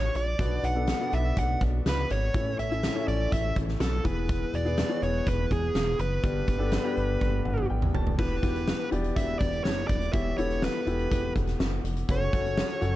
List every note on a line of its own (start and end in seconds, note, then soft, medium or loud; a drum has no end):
0.00 0.11 A1 medium
0.00 0.16 C#5 medium
0.15 0.35 A#1 medium
0.15 0.66 D5 medium
0.15 closed hi-hat medium
0.38 0.59 B1 medium
0.38 1.08 B2 medium
0.38 0.69 B3 soft
0.38 0.69 D4 medium
0.38 0.69 F#4 medium
0.38 0.69 B4 medium
0.38 kick loud
0.38 closed hi-hat medium
0.63 0.93 B1 loud
0.63 1.14 F#5 medium
0.63 closed hi-hat medium
0.75 0.95 B3 medium
0.75 0.95 D4 medium
0.75 0.96 F#4 medium
0.75 0.96 A4 medium
0.87 snare medium
0.87 closed hi-hat medium
1.00 1.80 B3 medium
1.00 1.80 D4 medium
1.00 1.80 F#4 medium
1.00 1.81 D5 medium
1.13 1.33 B1 loud
1.13 1.38 E5 medium
1.13 closed hi-hat medium
1.37 1.57 B1 medium
1.37 1.60 F#5 medium
1.37 kick medium
1.37 closed hi-hat medium
1.61 1.81 B1 loud
1.61 kick medium
1.61 closed hi-hat medium
1.86 2.06 C#2 medium
1.86 2.12 B4 medium
1.86 snare medium
1.86 closed hi-hat medium
2.10 2.30 G#1 medium
2.10 2.56 C#5 medium
2.10 closed hi-hat medium
2.34 2.54 A1 medium
2.34 3.04 A2 medium
2.34 2.64 C#4 medium
2.34 2.64 E4 medium
2.34 2.64 A4 medium
2.34 2.65 C#5 medium
2.34 kick loud
2.34 closed hi-hat medium
2.59 2.89 A1 medium
2.59 3.08 E5 medium
2.59 closed hi-hat medium
2.71 2.91 C#4 medium
2.71 2.91 E4 medium
2.71 2.91 A4 medium
2.71 2.92 E5 medium
2.71 closed hi-hat soft
2.83 snare medium
2.83 closed hi-hat medium
2.95 3.75 C#4 medium
2.95 3.75 E4 medium
2.95 3.75 A4 medium
2.95 3.75 C#5 medium
3.07 3.27 A1 medium
3.07 3.33 D5 medium
3.07 closed hi-hat medium
3.32 3.52 A1 loud
3.32 3.55 E5 medium
3.32 kick medium
3.32 closed hi-hat medium
3.56 3.76 A1 medium
3.56 kick medium
3.56 closed hi-hat medium
3.68 snare soft
3.80 4.00 B1 loud
3.80 4.06 A4 medium
3.80 snare medium
3.80 closed hi-hat medium
4.04 4.45 E1 medium
4.04 4.74 E3 medium
4.04 4.54 B3 medium
4.04 4.54 E4 medium
4.04 4.55 G#4 medium
4.04 4.55 B4 medium
4.04 4.56 B4 medium
4.04 kick medium
4.04 closed hi-hat medium
4.29 kick loud
4.29 closed hi-hat medium
4.54 4.84 E1 medium
4.54 5.03 D5 medium
4.54 closed hi-hat medium
4.65 4.85 B3 medium
4.65 4.85 E4 medium
4.65 4.86 G#4 medium
4.65 4.86 B4 medium
4.65 closed hi-hat soft
4.77 snare loud
4.77 closed hi-hat medium
4.88 5.69 B3 medium
4.88 5.69 E4 medium
4.88 5.70 G#4 medium
4.88 5.70 C#5 medium
5.02 5.22 E1 medium
5.02 5.28 C#5 medium
5.02 closed hi-hat medium
5.27 5.47 E1 loud
5.27 5.52 B4 medium
5.27 kick medium
5.27 closed hi-hat medium
5.51 5.71 E1 loud
5.51 6.00 G#4 medium
5.51 kick medium
5.51 closed hi-hat medium
5.74 5.95 E1 loud
5.74 snare medium
5.74 closed hi-hat medium
5.99 6.19 F#1 medium
5.99 7.67 B4 medium
5.99 closed hi-hat medium
6.23 6.44 G1 medium
6.23 6.93 G2 medium
6.23 6.53 B3 medium
6.23 6.54 D4 soft
6.23 6.54 G4 medium
6.23 6.54 B4 medium
6.23 kick loud
6.23 closed hi-hat medium
6.48 6.78 G1 medium
6.48 kick medium
6.48 closed hi-hat medium
6.58 6.79 B3 medium
6.58 6.80 D4 medium
6.58 6.80 G4 medium
6.58 6.80 A4 medium
6.72 snare loud
6.72 closed hi-hat medium
6.84 7.64 B3 medium
6.84 7.64 D4 medium
6.84 7.65 G4 medium
6.84 7.65 B4 medium
6.97 7.17 G1 medium
6.97 closed hi-hat medium
7.21 7.41 G1 loud
7.21 kick medium
7.21 high tom soft
7.45 7.66 G1 loud
7.45 7.68 F#5 medium
7.45 mid tom medium
7.58 mid tom medium
7.70 7.90 A1 medium
7.70 7.93 G5 medium
7.82 mid tom medium
7.94 8.15 D#1 medium
7.94 8.17 A5 medium
7.94 floor tom medium
8.07 floor tom medium
8.18 8.39 E1 medium
8.18 8.88 E3 medium
8.18 8.39 B3 soft
8.18 8.39 E4 soft
8.18 8.39 G4 medium
8.18 8.88 B4 loud
8.18 8.39 B4 medium
8.18 kick loud
8.18 crash medium
8.42 8.73 E1 medium
8.42 8.83 B3 medium
8.42 8.83 E4 medium
8.42 8.83 G4 medium
8.42 8.83 B4 medium
8.42 kick medium
8.42 closed hi-hat medium
8.56 closed hi-hat soft
8.68 snare loud
8.91 9.12 E1 medium
8.91 9.71 B3 medium
8.91 9.72 E4 medium
8.91 9.72 G4 medium
8.91 9.72 D5 medium
8.91 closed hi-hat medium
9.04 closed hi-hat soft
9.16 9.36 E1 medium
9.16 9.39 E5 medium
9.16 kick medium
9.16 closed hi-hat medium
9.39 9.61 E1 medium
9.39 9.63 D5 medium
9.39 kick medium
9.39 closed hi-hat medium
9.53 closed hi-hat soft
9.64 9.85 F#1 medium
9.64 9.87 C#5 medium
9.64 snare loud
9.87 10.10 D#1 medium
9.87 10.12 D5 medium
9.87 kick medium
9.87 closed hi-hat medium
10.02 closed hi-hat medium
10.13 10.34 E1 medium
10.13 10.83 E3 soft
10.13 10.34 B3 medium
10.13 10.34 E4 soft
10.13 10.34 G4 medium
10.13 10.34 C#5 medium
10.13 10.37 E5 medium
10.13 kick loud
10.13 closed hi-hat medium
10.38 10.68 E1 medium
10.38 10.78 B3 medium
10.38 10.78 E4 medium
10.38 10.78 G4 medium
10.38 10.79 A4 medium
10.38 10.63 C#5 medium
10.38 closed hi-hat medium
10.50 closed hi-hat soft
10.62 11.32 B4 medium
10.62 snare loud
10.75 closed hi-hat soft
10.86 11.07 E1 loud
10.86 11.66 B3 medium
10.86 11.67 E4 medium
10.86 11.67 G4 medium
10.86 11.67 A4 medium
10.86 closed hi-hat medium
10.99 closed hi-hat soft
11.12 11.32 E1 medium
11.12 kick medium
11.12 closed hi-hat medium
11.36 11.56 E1 loud
11.36 kick medium
11.36 closed hi-hat medium
11.47 snare soft
11.47 closed hi-hat soft
11.60 11.80 F#1 medium
11.60 snare medium
11.84 12.04 F1 medium
11.84 closed hi-hat medium
11.96 closed hi-hat medium
12.09 12.29 F#1 loud
12.09 12.29 C#4 medium
12.09 12.29 F#4 medium
12.09 12.29 A4 medium
12.09 12.29 C#5 medium
12.09 12.96 C#5 medium
12.09 kick loud
12.09 closed hi-hat medium
12.32 12.63 F#1 medium
12.32 12.73 C#4 medium
12.32 12.73 F#4 medium
12.32 12.73 A4 medium
12.32 12.73 C#5 medium
12.32 kick medium
12.32 closed hi-hat medium
12.46 closed hi-hat soft
12.57 snare loud
12.70 closed hi-hat soft
12.81 12.96 F#1 loud
12.81 12.96 C#4 medium
12.81 12.96 F#4 medium
12.81 12.96 A4 medium
12.81 12.96 C#5 medium
12.81 closed hi-hat medium